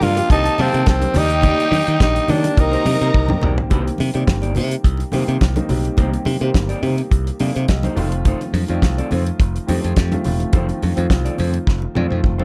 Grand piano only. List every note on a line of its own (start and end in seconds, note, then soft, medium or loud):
0.00 0.16 F3 medium
0.00 0.16 G3 medium
0.00 0.16 A#3 medium
0.00 0.17 D4 medium
0.00 0.17 G4 medium
0.16 0.30 F3 medium
0.16 0.29 G3 medium
0.16 0.29 A#3 medium
0.16 0.30 D4 medium
0.16 0.30 G4 medium
0.29 0.54 D#3 medium
0.29 0.55 G3 medium
0.29 0.55 A#3 medium
0.29 0.55 C4 medium
0.29 0.55 G4 loud
0.57 0.94 D#3 medium
0.57 0.95 G3 medium
0.57 0.95 A#3 medium
0.57 0.95 C4 medium
0.57 0.95 G4 medium
1.00 1.13 D#3 medium
1.00 1.14 G3 medium
1.00 1.14 A#3 medium
1.00 1.15 C4 medium
1.00 1.14 G4 medium
1.14 1.88 D#3 medium
1.14 1.88 G3 medium
1.14 1.88 A#3 medium
1.14 1.89 G4 medium
1.14 1.88 D5 medium
2.00 2.37 D#3 medium
2.00 2.37 G3 medium
2.00 2.37 A#3 medium
2.00 2.37 D4 medium
2.00 2.38 G4 medium
2.43 2.56 D#3 medium
2.43 2.56 G3 medium
2.43 2.56 A#3 medium
2.43 2.57 D4 medium
2.43 2.57 G4 medium
2.57 2.81 D#3 medium
2.57 2.82 G3 medium
2.57 2.82 A#3 medium
2.57 2.82 C4 medium
2.57 2.82 G4 medium
2.85 3.22 D#3 medium
2.85 3.22 G3 medium
2.85 3.22 A#3 medium
2.85 3.23 C4 medium
2.85 3.23 G4 medium
3.28 3.64 D#3 medium
3.28 3.64 G3 medium
3.28 3.65 A#3 medium
3.28 3.65 C4 medium
3.28 3.65 G4 medium
3.70 4.07 D#3 medium
3.70 4.07 G3 medium
3.70 4.07 A#3 medium
3.70 4.07 C4 medium
3.70 4.08 G4 medium
4.13 4.98 D#3 medium
4.13 4.98 G3 medium
4.13 4.99 A#3 medium
4.13 4.99 C4 medium
4.13 4.99 G4 medium
5.12 5.49 D#3 medium
5.12 5.49 G3 medium
5.12 5.49 A#3 medium
5.12 5.49 C4 medium
5.12 5.50 G4 medium
5.56 5.67 D#3 medium
5.56 5.68 G3 medium
5.56 5.68 A#3 medium
5.56 5.68 C4 medium
5.56 5.68 D#4 medium
5.69 5.94 D#3 medium
5.69 5.94 G3 medium
5.69 5.94 A#3 medium
5.69 5.94 C4 medium
5.69 5.94 G4 medium
5.97 6.34 D#3 medium
5.97 6.34 G3 medium
5.97 6.35 A#3 medium
5.97 6.35 C4 medium
5.97 6.35 G4 medium
6.40 7.25 D#3 medium
6.40 7.25 G3 medium
6.40 7.25 A#3 medium
6.40 7.26 C4 medium
6.40 7.26 G4 medium
7.40 7.68 A4 soft
7.40 7.67 F5 medium
7.68 7.83 G4 medium
7.68 7.83 D#5 medium
7.83 8.11 D#4 medium
7.83 8.11 C5 medium
7.95 8.57 D#3 medium
7.95 8.57 F3 medium
7.95 8.57 A3 medium
7.95 8.58 C4 medium
7.95 8.57 F4 loud
8.68 9.53 D#3 medium
8.68 9.53 F3 medium
8.68 9.53 A3 medium
8.68 9.54 C4 medium
8.68 9.54 F4 loud
9.67 10.04 D#3 medium
9.67 10.04 F3 medium
9.67 10.04 A3 medium
9.67 10.05 C4 medium
9.67 10.05 G4 medium
10.11 10.22 D#3 medium
10.11 10.23 F3 medium
10.11 10.23 A3 medium
10.11 10.23 C4 medium
10.11 10.24 F4 medium
10.24 10.49 D#3 medium
10.24 10.49 F3 medium
10.24 10.49 A3 medium
10.24 10.49 C4 medium
10.24 10.50 F4 medium
10.53 10.90 D#3 medium
10.53 10.90 F3 medium
10.53 10.90 A3 medium
10.53 10.91 C4 medium
10.53 10.91 F4 medium
10.95 11.81 D#3 medium
10.95 11.81 F3 medium
10.95 11.81 A3 medium
10.95 11.81 C4 medium
10.95 11.82 F4 medium
11.95 12.32 D#3 medium
11.95 12.32 F3 medium
11.95 12.32 A3 medium
11.95 12.33 C4 medium
11.95 12.33 F4 medium
12.38 12.44 D#3 medium
12.38 12.44 F3 medium
12.38 12.44 A3 medium
12.38 12.44 C4 medium
12.38 12.44 F4 medium